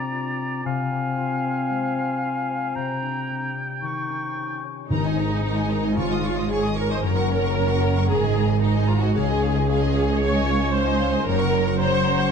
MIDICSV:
0, 0, Header, 1, 11, 480
1, 0, Start_track
1, 0, Tempo, 526316
1, 594, Time_signature, 4, 2, 24, 8
1, 2998, Tempo, 539084
1, 5398, Tempo, 530504
1, 8758, Tempo, 524934
1, 11154, End_track
2, 0, Start_track
2, 0, Title_t, "Flute"
2, 0, Program_c, 0, 73
2, 0, Note_on_c, 0, 82, 39
2, 562, Note_off_c, 0, 82, 0
2, 586, Note_on_c, 0, 80, 45
2, 2512, Note_on_c, 0, 82, 41
2, 2526, Note_off_c, 0, 80, 0
2, 3223, Note_off_c, 0, 82, 0
2, 3475, Note_on_c, 0, 85, 35
2, 4164, Note_off_c, 0, 85, 0
2, 11154, End_track
3, 0, Start_track
3, 0, Title_t, "Violin section"
3, 0, Program_c, 1, 48
3, 4450, Note_on_c, 1, 70, 47
3, 4452, Note_on_c, 1, 82, 48
3, 4558, Note_off_c, 1, 70, 0
3, 4559, Note_off_c, 1, 82, 0
3, 4569, Note_on_c, 1, 80, 42
3, 4574, Note_on_c, 1, 75, 42
3, 4679, Note_on_c, 1, 70, 41
3, 4680, Note_on_c, 1, 82, 45
3, 4685, Note_off_c, 1, 80, 0
3, 4687, Note_off_c, 1, 75, 0
3, 4800, Note_off_c, 1, 70, 0
3, 4800, Note_off_c, 1, 82, 0
3, 4803, Note_on_c, 1, 75, 40
3, 4804, Note_on_c, 1, 80, 41
3, 4918, Note_on_c, 1, 70, 44
3, 4919, Note_on_c, 1, 82, 45
3, 4921, Note_off_c, 1, 75, 0
3, 4922, Note_off_c, 1, 80, 0
3, 5031, Note_off_c, 1, 70, 0
3, 5031, Note_off_c, 1, 82, 0
3, 5032, Note_on_c, 1, 75, 45
3, 5033, Note_on_c, 1, 80, 44
3, 5151, Note_on_c, 1, 70, 43
3, 5152, Note_on_c, 1, 82, 44
3, 5156, Note_off_c, 1, 75, 0
3, 5156, Note_off_c, 1, 80, 0
3, 5267, Note_on_c, 1, 75, 44
3, 5270, Note_on_c, 1, 80, 43
3, 5275, Note_off_c, 1, 70, 0
3, 5275, Note_off_c, 1, 82, 0
3, 5386, Note_on_c, 1, 73, 44
3, 5388, Note_on_c, 1, 85, 46
3, 5392, Note_off_c, 1, 75, 0
3, 5393, Note_off_c, 1, 80, 0
3, 5503, Note_off_c, 1, 73, 0
3, 5504, Note_off_c, 1, 85, 0
3, 5518, Note_on_c, 1, 75, 41
3, 5519, Note_on_c, 1, 87, 43
3, 5633, Note_on_c, 1, 85, 45
3, 5634, Note_on_c, 1, 73, 46
3, 5638, Note_off_c, 1, 75, 0
3, 5638, Note_off_c, 1, 87, 0
3, 5746, Note_on_c, 1, 75, 43
3, 5749, Note_on_c, 1, 87, 43
3, 5754, Note_off_c, 1, 85, 0
3, 5755, Note_off_c, 1, 73, 0
3, 5871, Note_off_c, 1, 75, 0
3, 5871, Note_on_c, 1, 85, 48
3, 5872, Note_off_c, 1, 87, 0
3, 5874, Note_on_c, 1, 73, 45
3, 5979, Note_on_c, 1, 75, 45
3, 5981, Note_on_c, 1, 87, 45
3, 5984, Note_off_c, 1, 85, 0
3, 5986, Note_off_c, 1, 73, 0
3, 6106, Note_on_c, 1, 73, 45
3, 6107, Note_off_c, 1, 75, 0
3, 6108, Note_off_c, 1, 87, 0
3, 6108, Note_on_c, 1, 85, 46
3, 6229, Note_on_c, 1, 87, 45
3, 6231, Note_off_c, 1, 73, 0
3, 6232, Note_off_c, 1, 85, 0
3, 6236, Note_on_c, 1, 75, 45
3, 6347, Note_on_c, 1, 73, 50
3, 6350, Note_on_c, 1, 82, 48
3, 6352, Note_off_c, 1, 87, 0
3, 6356, Note_off_c, 1, 75, 0
3, 6463, Note_off_c, 1, 73, 0
3, 6464, Note_off_c, 1, 82, 0
3, 6469, Note_on_c, 1, 85, 45
3, 6470, Note_on_c, 1, 78, 44
3, 6582, Note_on_c, 1, 82, 49
3, 6586, Note_on_c, 1, 73, 46
3, 6592, Note_off_c, 1, 85, 0
3, 6593, Note_off_c, 1, 78, 0
3, 6701, Note_on_c, 1, 78, 43
3, 6703, Note_on_c, 1, 85, 44
3, 6709, Note_off_c, 1, 82, 0
3, 6711, Note_off_c, 1, 73, 0
3, 6818, Note_on_c, 1, 82, 46
3, 6820, Note_on_c, 1, 73, 47
3, 6829, Note_off_c, 1, 78, 0
3, 6830, Note_off_c, 1, 85, 0
3, 6931, Note_on_c, 1, 78, 47
3, 6935, Note_on_c, 1, 85, 47
3, 6938, Note_off_c, 1, 82, 0
3, 6939, Note_off_c, 1, 73, 0
3, 7056, Note_on_c, 1, 82, 47
3, 7062, Note_on_c, 1, 73, 45
3, 7064, Note_off_c, 1, 78, 0
3, 7066, Note_off_c, 1, 85, 0
3, 7184, Note_on_c, 1, 78, 47
3, 7186, Note_off_c, 1, 82, 0
3, 7187, Note_on_c, 1, 85, 47
3, 7189, Note_off_c, 1, 73, 0
3, 7301, Note_on_c, 1, 70, 47
3, 7303, Note_on_c, 1, 82, 47
3, 7310, Note_off_c, 1, 78, 0
3, 7312, Note_off_c, 1, 85, 0
3, 7420, Note_off_c, 1, 70, 0
3, 7420, Note_on_c, 1, 80, 47
3, 7421, Note_off_c, 1, 82, 0
3, 7424, Note_on_c, 1, 75, 45
3, 7547, Note_on_c, 1, 70, 50
3, 7548, Note_off_c, 1, 80, 0
3, 7550, Note_off_c, 1, 75, 0
3, 7550, Note_on_c, 1, 82, 48
3, 7666, Note_on_c, 1, 75, 46
3, 7666, Note_on_c, 1, 80, 46
3, 7671, Note_off_c, 1, 70, 0
3, 7673, Note_off_c, 1, 82, 0
3, 7780, Note_on_c, 1, 82, 48
3, 7782, Note_on_c, 1, 70, 51
3, 7791, Note_off_c, 1, 75, 0
3, 7791, Note_off_c, 1, 80, 0
3, 7898, Note_on_c, 1, 80, 49
3, 7899, Note_off_c, 1, 82, 0
3, 7900, Note_off_c, 1, 70, 0
3, 7901, Note_on_c, 1, 75, 49
3, 8019, Note_on_c, 1, 82, 52
3, 8023, Note_on_c, 1, 70, 51
3, 8027, Note_off_c, 1, 80, 0
3, 8028, Note_off_c, 1, 75, 0
3, 8141, Note_on_c, 1, 80, 50
3, 8142, Note_on_c, 1, 75, 50
3, 8147, Note_off_c, 1, 82, 0
3, 8150, Note_off_c, 1, 70, 0
3, 8258, Note_on_c, 1, 77, 55
3, 8260, Note_on_c, 1, 73, 54
3, 8269, Note_off_c, 1, 75, 0
3, 8269, Note_off_c, 1, 80, 0
3, 8378, Note_off_c, 1, 77, 0
3, 8379, Note_off_c, 1, 73, 0
3, 8384, Note_on_c, 1, 75, 48
3, 8386, Note_on_c, 1, 80, 48
3, 8494, Note_on_c, 1, 73, 52
3, 8496, Note_on_c, 1, 77, 51
3, 8510, Note_off_c, 1, 75, 0
3, 8512, Note_off_c, 1, 80, 0
3, 8620, Note_on_c, 1, 80, 46
3, 8622, Note_on_c, 1, 75, 49
3, 8625, Note_off_c, 1, 73, 0
3, 8626, Note_off_c, 1, 77, 0
3, 8734, Note_on_c, 1, 77, 54
3, 8739, Note_on_c, 1, 73, 55
3, 8748, Note_off_c, 1, 80, 0
3, 8749, Note_off_c, 1, 75, 0
3, 8857, Note_off_c, 1, 77, 0
3, 8859, Note_off_c, 1, 73, 0
3, 8860, Note_on_c, 1, 75, 53
3, 8864, Note_on_c, 1, 80, 49
3, 8988, Note_on_c, 1, 77, 53
3, 8989, Note_off_c, 1, 75, 0
3, 8990, Note_on_c, 1, 73, 53
3, 8991, Note_off_c, 1, 80, 0
3, 9111, Note_on_c, 1, 80, 51
3, 9112, Note_on_c, 1, 75, 52
3, 9114, Note_off_c, 1, 77, 0
3, 9115, Note_off_c, 1, 73, 0
3, 9232, Note_on_c, 1, 77, 56
3, 9235, Note_off_c, 1, 80, 0
3, 9236, Note_off_c, 1, 75, 0
3, 9237, Note_on_c, 1, 73, 55
3, 9347, Note_off_c, 1, 77, 0
3, 9349, Note_off_c, 1, 73, 0
3, 9353, Note_on_c, 1, 80, 52
3, 9354, Note_on_c, 1, 75, 52
3, 9476, Note_off_c, 1, 75, 0
3, 9476, Note_off_c, 1, 80, 0
3, 9479, Note_on_c, 1, 73, 53
3, 9481, Note_on_c, 1, 77, 56
3, 9589, Note_on_c, 1, 75, 55
3, 9591, Note_on_c, 1, 80, 51
3, 9599, Note_off_c, 1, 73, 0
3, 9600, Note_off_c, 1, 77, 0
3, 9705, Note_on_c, 1, 73, 55
3, 9707, Note_on_c, 1, 77, 55
3, 9714, Note_off_c, 1, 75, 0
3, 9715, Note_off_c, 1, 80, 0
3, 9823, Note_off_c, 1, 73, 0
3, 9824, Note_off_c, 1, 77, 0
3, 9829, Note_on_c, 1, 80, 52
3, 9830, Note_on_c, 1, 75, 54
3, 9945, Note_on_c, 1, 77, 54
3, 9946, Note_on_c, 1, 73, 58
3, 9953, Note_off_c, 1, 80, 0
3, 9954, Note_off_c, 1, 75, 0
3, 10068, Note_on_c, 1, 80, 50
3, 10071, Note_off_c, 1, 77, 0
3, 10072, Note_off_c, 1, 73, 0
3, 10075, Note_on_c, 1, 75, 53
3, 10192, Note_on_c, 1, 82, 60
3, 10193, Note_off_c, 1, 80, 0
3, 10194, Note_on_c, 1, 73, 59
3, 10196, Note_off_c, 1, 75, 0
3, 10306, Note_off_c, 1, 82, 0
3, 10307, Note_off_c, 1, 73, 0
3, 10315, Note_on_c, 1, 85, 55
3, 10319, Note_on_c, 1, 78, 54
3, 10436, Note_off_c, 1, 85, 0
3, 10438, Note_off_c, 1, 78, 0
3, 10438, Note_on_c, 1, 73, 54
3, 10442, Note_on_c, 1, 82, 56
3, 10553, Note_on_c, 1, 85, 52
3, 10555, Note_on_c, 1, 78, 51
3, 10557, Note_off_c, 1, 73, 0
3, 10559, Note_off_c, 1, 82, 0
3, 10674, Note_off_c, 1, 85, 0
3, 10675, Note_off_c, 1, 78, 0
3, 10678, Note_on_c, 1, 82, 60
3, 10680, Note_on_c, 1, 73, 56
3, 10788, Note_off_c, 1, 82, 0
3, 10789, Note_off_c, 1, 73, 0
3, 10797, Note_on_c, 1, 85, 55
3, 10799, Note_on_c, 1, 78, 55
3, 10914, Note_on_c, 1, 82, 53
3, 10915, Note_on_c, 1, 73, 55
3, 10916, Note_off_c, 1, 85, 0
3, 10917, Note_off_c, 1, 78, 0
3, 11032, Note_on_c, 1, 85, 58
3, 11033, Note_on_c, 1, 78, 57
3, 11035, Note_off_c, 1, 73, 0
3, 11035, Note_off_c, 1, 82, 0
3, 11154, Note_off_c, 1, 78, 0
3, 11154, Note_off_c, 1, 85, 0
3, 11154, End_track
4, 0, Start_track
4, 0, Title_t, "Oboe"
4, 0, Program_c, 2, 68
4, 0, Note_on_c, 2, 74, 41
4, 591, Note_off_c, 2, 74, 0
4, 603, Note_on_c, 2, 77, 45
4, 2480, Note_off_c, 2, 77, 0
4, 2511, Note_on_c, 2, 79, 41
4, 4167, Note_off_c, 2, 79, 0
4, 11154, End_track
5, 0, Start_track
5, 0, Title_t, "Viola section"
5, 0, Program_c, 3, 48
5, 4439, Note_on_c, 3, 63, 73
5, 5361, Note_off_c, 3, 63, 0
5, 5402, Note_on_c, 3, 65, 65
5, 5878, Note_off_c, 3, 65, 0
5, 5879, Note_on_c, 3, 68, 64
5, 6112, Note_off_c, 3, 68, 0
5, 6114, Note_on_c, 3, 70, 72
5, 6232, Note_off_c, 3, 70, 0
5, 6248, Note_on_c, 3, 72, 63
5, 6293, Note_off_c, 3, 72, 0
5, 6353, Note_on_c, 3, 70, 81
5, 7296, Note_off_c, 3, 70, 0
5, 7306, Note_on_c, 3, 68, 80
5, 7781, Note_off_c, 3, 68, 0
5, 7784, Note_on_c, 3, 63, 68
5, 8025, Note_off_c, 3, 63, 0
5, 8037, Note_on_c, 3, 65, 70
5, 8117, Note_off_c, 3, 65, 0
5, 8117, Note_on_c, 3, 66, 67
5, 8275, Note_on_c, 3, 68, 79
5, 8277, Note_off_c, 3, 66, 0
5, 8747, Note_off_c, 3, 68, 0
5, 8758, Note_on_c, 3, 68, 80
5, 9231, Note_off_c, 3, 68, 0
5, 9231, Note_on_c, 3, 73, 83
5, 9707, Note_on_c, 3, 72, 82
5, 9714, Note_off_c, 3, 73, 0
5, 10192, Note_off_c, 3, 72, 0
5, 10199, Note_on_c, 3, 70, 91
5, 10667, Note_off_c, 3, 70, 0
5, 10679, Note_on_c, 3, 72, 94
5, 11148, Note_off_c, 3, 72, 0
5, 11154, End_track
6, 0, Start_track
6, 0, Title_t, "Violin section"
6, 0, Program_c, 4, 48
6, 4437, Note_on_c, 4, 63, 61
6, 5359, Note_off_c, 4, 63, 0
6, 5400, Note_on_c, 4, 65, 58
6, 5866, Note_on_c, 4, 68, 58
6, 5877, Note_off_c, 4, 65, 0
6, 6110, Note_off_c, 4, 68, 0
6, 6115, Note_on_c, 4, 70, 61
6, 6225, Note_on_c, 4, 72, 58
6, 6233, Note_off_c, 4, 70, 0
6, 6348, Note_off_c, 4, 72, 0
6, 6348, Note_on_c, 4, 70, 73
6, 7313, Note_off_c, 4, 70, 0
6, 7315, Note_on_c, 4, 68, 72
6, 7784, Note_on_c, 4, 63, 58
6, 7785, Note_off_c, 4, 68, 0
6, 8016, Note_on_c, 4, 65, 62
6, 8025, Note_off_c, 4, 63, 0
6, 8103, Note_on_c, 4, 66, 59
6, 8104, Note_off_c, 4, 65, 0
6, 8267, Note_off_c, 4, 66, 0
6, 8277, Note_on_c, 4, 68, 70
6, 8744, Note_off_c, 4, 68, 0
6, 8755, Note_on_c, 4, 68, 69
6, 9229, Note_off_c, 4, 68, 0
6, 9240, Note_on_c, 4, 73, 79
6, 9710, Note_off_c, 4, 73, 0
6, 9716, Note_on_c, 4, 72, 73
6, 10187, Note_off_c, 4, 72, 0
6, 10199, Note_on_c, 4, 70, 81
6, 10667, Note_off_c, 4, 70, 0
6, 10676, Note_on_c, 4, 72, 79
6, 11146, Note_off_c, 4, 72, 0
6, 11154, End_track
7, 0, Start_track
7, 0, Title_t, "Harp"
7, 0, Program_c, 5, 46
7, 0, Note_on_c, 5, 48, 37
7, 0, Note_on_c, 5, 62, 35
7, 0, Note_on_c, 5, 65, 34
7, 0, Note_on_c, 5, 74, 34
7, 102, Note_off_c, 5, 65, 0
7, 113, Note_on_c, 5, 65, 39
7, 341, Note_off_c, 5, 74, 0
7, 351, Note_on_c, 5, 74, 38
7, 584, Note_off_c, 5, 48, 0
7, 595, Note_on_c, 5, 48, 48
7, 611, Note_off_c, 5, 74, 0
7, 612, Note_off_c, 5, 62, 0
7, 829, Note_on_c, 5, 60, 38
7, 1060, Note_off_c, 5, 65, 0
7, 1071, Note_on_c, 5, 65, 39
7, 1315, Note_on_c, 5, 72, 37
7, 1551, Note_on_c, 5, 56, 34
7, 1780, Note_off_c, 5, 60, 0
7, 1791, Note_on_c, 5, 60, 35
7, 2023, Note_off_c, 5, 65, 0
7, 2034, Note_on_c, 5, 65, 38
7, 2260, Note_off_c, 5, 72, 0
7, 2271, Note_on_c, 5, 72, 35
7, 2502, Note_off_c, 5, 48, 0
7, 2513, Note_on_c, 5, 48, 43
7, 2531, Note_off_c, 5, 56, 0
7, 2532, Note_off_c, 5, 60, 0
7, 2532, Note_off_c, 5, 72, 0
7, 2533, Note_off_c, 5, 65, 0
7, 2754, Note_on_c, 5, 62, 35
7, 2997, Note_on_c, 5, 67, 34
7, 3233, Note_on_c, 5, 74, 29
7, 3471, Note_on_c, 5, 51, 33
7, 3496, Note_off_c, 5, 74, 0
7, 3497, Note_off_c, 5, 62, 0
7, 3498, Note_off_c, 5, 48, 0
7, 3713, Note_on_c, 5, 61, 28
7, 3941, Note_off_c, 5, 67, 0
7, 3952, Note_on_c, 5, 67, 30
7, 4198, Note_on_c, 5, 73, 30
7, 4441, Note_on_c, 5, 44, 51
7, 4457, Note_off_c, 5, 67, 0
7, 4458, Note_off_c, 5, 51, 0
7, 4458, Note_off_c, 5, 61, 0
7, 4460, Note_off_c, 5, 73, 0
7, 4558, Note_on_c, 5, 51, 41
7, 4682, Note_on_c, 5, 63, 41
7, 4799, Note_on_c, 5, 68, 43
7, 4918, Note_on_c, 5, 70, 44
7, 5040, Note_on_c, 5, 75, 45
7, 5157, Note_on_c, 5, 80, 41
7, 5277, Note_on_c, 5, 82, 44
7, 5385, Note_off_c, 5, 44, 0
7, 5396, Note_on_c, 5, 44, 52
7, 5415, Note_off_c, 5, 51, 0
7, 5416, Note_off_c, 5, 70, 0
7, 5416, Note_off_c, 5, 82, 0
7, 5516, Note_on_c, 5, 51, 40
7, 5624, Note_off_c, 5, 63, 0
7, 5635, Note_on_c, 5, 63, 41
7, 5744, Note_off_c, 5, 68, 0
7, 5755, Note_on_c, 5, 68, 44
7, 5871, Note_on_c, 5, 73, 44
7, 5979, Note_off_c, 5, 75, 0
7, 5990, Note_on_c, 5, 75, 45
7, 6096, Note_off_c, 5, 80, 0
7, 6107, Note_on_c, 5, 80, 49
7, 6233, Note_on_c, 5, 85, 48
7, 6347, Note_on_c, 5, 42, 57
7, 6370, Note_off_c, 5, 80, 0
7, 6372, Note_off_c, 5, 75, 0
7, 6374, Note_off_c, 5, 44, 0
7, 6374, Note_off_c, 5, 51, 0
7, 6374, Note_off_c, 5, 63, 0
7, 6374, Note_off_c, 5, 68, 0
7, 6471, Note_on_c, 5, 49, 42
7, 6585, Note_on_c, 5, 66, 45
7, 6710, Note_on_c, 5, 70, 42
7, 6818, Note_off_c, 5, 73, 0
7, 6828, Note_on_c, 5, 73, 49
7, 6947, Note_on_c, 5, 78, 48
7, 7071, Note_on_c, 5, 82, 46
7, 7176, Note_off_c, 5, 85, 0
7, 7187, Note_on_c, 5, 85, 51
7, 7305, Note_on_c, 5, 44, 54
7, 7330, Note_off_c, 5, 66, 0
7, 7331, Note_off_c, 5, 78, 0
7, 7331, Note_off_c, 5, 85, 0
7, 7332, Note_off_c, 5, 42, 0
7, 7332, Note_off_c, 5, 73, 0
7, 7333, Note_off_c, 5, 49, 0
7, 7428, Note_on_c, 5, 51, 42
7, 7548, Note_on_c, 5, 63, 45
7, 7657, Note_off_c, 5, 70, 0
7, 7668, Note_on_c, 5, 70, 47
7, 7789, Note_on_c, 5, 75, 50
7, 7896, Note_off_c, 5, 70, 0
7, 7907, Note_on_c, 5, 70, 46
7, 8017, Note_off_c, 5, 82, 0
7, 8028, Note_on_c, 5, 82, 51
7, 8154, Note_on_c, 5, 87, 52
7, 8271, Note_on_c, 5, 49, 63
7, 8290, Note_off_c, 5, 44, 0
7, 8291, Note_off_c, 5, 51, 0
7, 8291, Note_off_c, 5, 70, 0
7, 8292, Note_off_c, 5, 82, 0
7, 8389, Note_on_c, 5, 56, 48
7, 8503, Note_off_c, 5, 63, 0
7, 8514, Note_on_c, 5, 63, 51
7, 8631, Note_on_c, 5, 65, 51
7, 8743, Note_off_c, 5, 75, 0
7, 8754, Note_on_c, 5, 75, 53
7, 8869, Note_off_c, 5, 65, 0
7, 8880, Note_on_c, 5, 65, 54
7, 9001, Note_on_c, 5, 77, 48
7, 9109, Note_off_c, 5, 87, 0
7, 9120, Note_on_c, 5, 87, 51
7, 9227, Note_off_c, 5, 77, 0
7, 9238, Note_on_c, 5, 77, 55
7, 9348, Note_off_c, 5, 87, 0
7, 9359, Note_on_c, 5, 87, 53
7, 9468, Note_off_c, 5, 77, 0
7, 9479, Note_on_c, 5, 77, 56
7, 9588, Note_off_c, 5, 75, 0
7, 9599, Note_on_c, 5, 75, 53
7, 9708, Note_off_c, 5, 65, 0
7, 9719, Note_on_c, 5, 65, 54
7, 9832, Note_off_c, 5, 63, 0
7, 9843, Note_on_c, 5, 63, 50
7, 9953, Note_off_c, 5, 56, 0
7, 9964, Note_on_c, 5, 56, 50
7, 10075, Note_off_c, 5, 63, 0
7, 10086, Note_on_c, 5, 63, 52
7, 10205, Note_on_c, 5, 42, 69
7, 10214, Note_off_c, 5, 49, 0
7, 10217, Note_off_c, 5, 65, 0
7, 10217, Note_off_c, 5, 75, 0
7, 10217, Note_off_c, 5, 77, 0
7, 10217, Note_off_c, 5, 87, 0
7, 10220, Note_off_c, 5, 56, 0
7, 10221, Note_off_c, 5, 63, 0
7, 10328, Note_on_c, 5, 49, 52
7, 10446, Note_on_c, 5, 58, 53
7, 10564, Note_on_c, 5, 66, 53
7, 10681, Note_on_c, 5, 61, 55
7, 10798, Note_on_c, 5, 70, 55
7, 10920, Note_on_c, 5, 78, 59
7, 11038, Note_on_c, 5, 85, 54
7, 11149, Note_off_c, 5, 78, 0
7, 11154, Note_off_c, 5, 42, 0
7, 11154, Note_off_c, 5, 49, 0
7, 11154, Note_off_c, 5, 58, 0
7, 11154, Note_off_c, 5, 61, 0
7, 11154, Note_off_c, 5, 66, 0
7, 11154, Note_off_c, 5, 70, 0
7, 11154, Note_off_c, 5, 85, 0
7, 11154, End_track
8, 0, Start_track
8, 0, Title_t, "Clarinet"
8, 0, Program_c, 6, 71
8, 0, Note_on_c, 6, 60, 36
8, 560, Note_off_c, 6, 60, 0
8, 579, Note_on_c, 6, 60, 56
8, 3181, Note_off_c, 6, 60, 0
8, 3469, Note_on_c, 6, 63, 41
8, 4161, Note_off_c, 6, 63, 0
8, 11154, End_track
9, 0, Start_track
9, 0, Title_t, "Timpani"
9, 0, Program_c, 7, 47
9, 4438, Note_on_c, 7, 44, 70
9, 5122, Note_off_c, 7, 44, 0
9, 5394, Note_on_c, 7, 44, 67
9, 6077, Note_off_c, 7, 44, 0
9, 11154, End_track
10, 0, Start_track
10, 0, Title_t, "Cello section"
10, 0, Program_c, 8, 48
10, 4441, Note_on_c, 8, 44, 52
10, 6319, Note_off_c, 8, 44, 0
10, 6352, Note_on_c, 8, 42, 54
10, 7314, Note_on_c, 8, 44, 61
10, 7315, Note_off_c, 8, 42, 0
10, 8275, Note_off_c, 8, 44, 0
10, 8276, Note_on_c, 8, 37, 59
10, 10197, Note_off_c, 8, 37, 0
10, 10199, Note_on_c, 8, 42, 67
10, 11154, Note_off_c, 8, 42, 0
10, 11154, End_track
11, 0, Start_track
11, 0, Title_t, "Double bass section"
11, 0, Program_c, 10, 48
11, 4439, Note_on_c, 10, 32, 54
11, 6318, Note_off_c, 10, 32, 0
11, 6351, Note_on_c, 10, 30, 56
11, 7312, Note_on_c, 10, 32, 64
11, 7314, Note_off_c, 10, 30, 0
11, 8273, Note_on_c, 10, 37, 68
11, 8274, Note_off_c, 10, 32, 0
11, 10196, Note_off_c, 10, 37, 0
11, 10196, Note_on_c, 10, 30, 71
11, 11154, Note_off_c, 10, 30, 0
11, 11154, End_track
0, 0, End_of_file